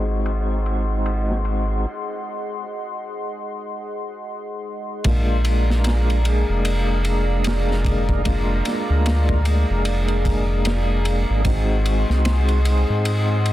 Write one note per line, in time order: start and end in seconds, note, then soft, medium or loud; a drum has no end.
0.00 1.86 G#1 medium
0.00 1.85 G#3 medium
0.00 1.86 C4 medium
0.00 1.86 D#4 medium
0.00 1.87 F#4 medium
0.00 5.02 G#4 medium
0.00 5.02 D#5 medium
0.00 5.02 F#5 medium
0.00 5.02 C6 medium
0.26 ride medium
0.66 ride medium
1.06 ride medium
1.31 snare soft
1.45 ride medium
5.04 6.44 A#1 loud
5.04 6.21 G#3 medium
5.04 6.22 A#3 medium
5.04 6.23 D4 medium
5.04 6.23 F4 loud
5.04 13.53 G#4 medium
5.04 11.42 D5 medium
5.04 11.41 F5 medium
5.04 11.41 A#5 loud
5.04 kick loud
5.04 ride medium
5.45 ride medium
5.70 snare soft
5.84 snare loud
5.84 ride medium
6.10 ride soft
6.25 8.21 G#3 medium
6.25 8.22 A#3 medium
6.25 8.22 D4 medium
6.25 8.23 G#4 medium
6.25 ride medium
6.49 8.62 F1 medium
6.65 ride medium
7.05 ride medium
7.44 snare loud
7.44 ride medium
7.71 snare soft
7.85 kick medium
7.85 ride medium
8.09 kick loud
8.24 9.41 G#3 medium
8.24 9.42 A#3 medium
8.24 9.42 D4 medium
8.24 9.43 F4 loud
8.24 kick loud
8.24 ride medium
8.65 snare soft
8.65 ride medium
8.90 9.65 D2 medium
9.06 snare loud
9.06 ride medium
9.29 kick medium
9.45 11.41 G#3 medium
9.45 11.42 A#3 medium
9.45 11.42 D4 medium
9.45 11.43 G#4 medium
9.45 ride medium
9.70 11.25 F1 loud
9.85 ride medium
10.08 ride soft
10.25 kick medium
10.25 ride medium
10.65 snare loud
10.65 ride medium
11.05 ride medium
11.30 12.05 G#1 medium
11.44 12.61 G#3 medium
11.44 12.62 C4 medium
11.44 12.62 D#4 medium
11.44 12.63 F#4 loud
11.44 13.53 D#5 medium
11.44 13.53 F#5 medium
11.44 13.53 C6 loud
11.44 kick loud
11.44 ride medium
11.86 ride medium
12.09 12.85 C2 loud
12.09 snare soft
12.25 snare loud
12.25 ride medium
12.48 ride soft
12.64 13.53 G#3 medium
12.64 13.53 C4 medium
12.64 13.53 D#4 medium
12.64 13.53 G#4 medium
12.64 ride medium
12.90 13.53 G#2 medium
13.05 ride medium
13.46 ride medium